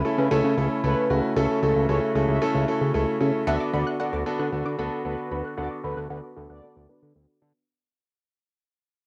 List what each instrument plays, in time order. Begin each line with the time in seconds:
Already playing: woodwind section C#3 A3 E4
0.05 grand piano A3 C#4 E4 A4
0.18 analog synth bass C#3, analog polysynth B4
0.31 analog synth bass C#2, grand piano A3 C#4 E4 A4
0.44 analog synth bass C#3
0.57 analog synth bass C#2, grand piano A3 C#4 E4 A4, analog polysynth A4
0.84 analog synth bass C#2, grand piano A3 C#4 E4 A4, analog polysynth B4
1.10 analog synth bass C#2, grand piano A3 C#4 E4 F#4
1.36 analog synth bass C#2, grand piano A3 C#4 E4 A4, woodwind section F#4, analog polysynth A4
1.63 analog synth bass C#2, grand piano A3 C#4 E4 A4, analog polysynth A4
1.76 analog synth bass C#2
1.89 analog synth bass C#2, grand piano A3 C#4 E4 A4, analog polysynth C#5
2.15 analog synth bass C#2, grand piano A3 C#4 E4 A4
2.28 analog synth bass C#2, analog polysynth E5
2.42 grand piano A3 C#4 E4 A4
2.55 analog synth bass C#2
2.68 grand piano A3 C#4 E4 A4
2.81 analog synth bass C#3
2.94 analog synth bass C#2, grand piano A3 C#4 E4 A4
3.21 analog synth bass C#3, grand piano A3 C#4 E4 A4
3.47 analog synth bass D2, woodwind section D3 B3 F#4, grand piano B3 D4 F#4 A4, analog polysynth E5, synth pluck F#5
3.60 synth pluck D6
3.73 analog synth bass D2, grand piano B3 D4 F#4 A4, analog polysynth D5, synth pluck B5
3.87 synth pluck F#6
4.00 grand piano B3 D4 F#4 A4, analog polysynth D5, synth pluck F#5
4.13 analog synth bass D2, synth pluck D6
4.26 grand piano B3 D4 F#4 A4
4.39 analog synth bass D3, analog polysynth B4, synth pluck F#6
4.52 analog synth bass D2, grand piano B3 D4 F#4 A4
4.66 analog synth bass D3, synth pluck D6
4.78 analog synth bass D2, grand piano B3 D4 F#4 A4, analog polysynth A4, synth pluck B5
5.05 analog synth bass D2, grand piano B3 D4 F#4 A4, analog polysynth B4
5.31 analog synth bass D2, grand piano B3 D4 F#4 A4, synth pluck B5
5.45 synth pluck F#6
5.57 analog synth bass D2, grand piano B3 D4 F#4 A4, analog polysynth D5, synth pluck F#5
5.71 synth pluck D6
5.84 analog synth bass D2, grand piano B3 D4 F#4 A4, analog polysynth B4, synth pluck B5
5.97 analog synth bass D2, synth pluck F#6
6.10 analog synth bass D2, grand piano B3 D4 F#4 A4, analog polysynth B4, synth pluck F#5
6.23 synth pluck D6
6.36 analog synth bass D2, grand piano B3 D4 F#4 A4
6.50 analog synth bass D2, analog polysynth D5, synth pluck F#6
6.63 grand piano B3 D4 F#4 A4
6.76 analog synth bass D2, synth pluck D6
6.89 grand piano B3 D4 F#4 B4, synth pluck B5
7.02 analog synth bass D3
7.15 analog synth bass D2, grand piano B3 D4 F#4 A4
7.42 analog synth bass D3, grand piano B3 D4 F#4 B4